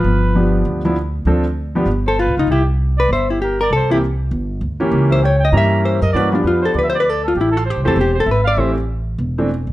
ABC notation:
X:1
M:4/4
L:1/8
Q:"Swing" 1/4=197
K:Gmix
V:1 name="Trumpet"
B4 z4 | z4 z c B F | G z2 d e G _B d | c G z6 |
z e g g ^a2 e _e | d F B c (3d e d d A | G A c c c c e f | e z6 z |]
V:2 name="Hollow-body jazz guitar"
[F,F]4 z4 | z4 z A F _E | E z2 B c E G _B | A E z6 |
z c ^c _e =e2 =c ^A | B D F A (3B c B A F | E F G A G A B d | c z6 z |]
V:3 name="Grand piano"
z2 [F,B,DG]3 [F,B,DE] z2 | [F,CDA] z2 [F,B,DG] z4 | z8 | z [E,_B,CG] z4 z [E,B,^CG]- |
[E,_B,^CG]2 z2 [E,^A,CG]3 z | [E,_B,^C^F] [=F,=B,DG]4 z3 | z3 [E,A,CG] z4 | [E,A,CG] z4 [E,A,CD] z2 |]
V:4 name="Upright bass" clef=bass
G,,,4 D,,4 | D,,4 G,,,2- (3G,,, B,,, ^C,, | C,,4 G,,,4 | C,,4 G,,,2 D,,2 |
^C,,4 G,,3 ^F,, | G,,2 F,,2 D,,4 | A,,,2- (3A,,, C,, E,, E,,,2 _A,,,2 | A,,,4 E,,,3 C,, |]